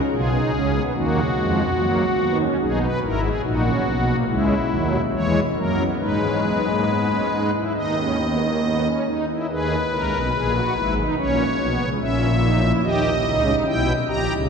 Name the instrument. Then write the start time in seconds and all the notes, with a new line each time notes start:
pipe organ
0.12 B1 B2 F4 G#4
0.33 D#4
0.53 C#2 C#3 C#4
0.74 B3
0.95 D#2 D#3 A#3 F#4
1.35 F2 F3 G#3
1.77 F#2 F#3 A#3
2.19 D#2 D#3 B3
2.39 C#4
2.61 B1 B2 D#4 G#4
2.82 B4
3.02 G#1 G#2 E4 A#4
3.23 G#4
3.44 A#1 A#2 D#4 F#4
3.65 C#4
3.86 B1 B2 B3
4.06 A#3
4.28 C#2 C#3 G#3 E4
4.70 D#2 D#3 F#3
5.13 E2 E3 G#3 C#5
5.56 F#2 F#3 A#3 A#4
5.78 B3
6.00 G#2 G#3 D#4 B4
6.22 C#4
6.43 B3
6.65 A#3
6.87 B3
7.09 C#4
7.32 D#4
7.54 E4
7.75 D#2 D#3 D#4 D#5
7.98 C#4
8.19 B3
8.41 A#3
8.62 B3
8.84 C#4
9.06 D#4
9.28 E4
9.50 D#2 D#3 G#4 B4
9.92 C#2 C#3 A#4
10.13 B1 B2
10.34 A#1 A#2 G#4
10.55 F#4
10.76 G#1 G#2 E4
10.97 D#4
11.17 A#1 A#2 C#4 C#5
11.59 B1 B2 B3
11.80 C#2 C#3
12.01 A#1 A#2 C#4 E5
12.42 D#4
12.63 E4
12.83 D#2 D#3 G4 D#5
13.25 C#2 C#3 D#4
13.47 D#4
13.67 B1 B2 E4 G5
14.08 A#1 A#2 G4 A#5
14.29 C#2 C#3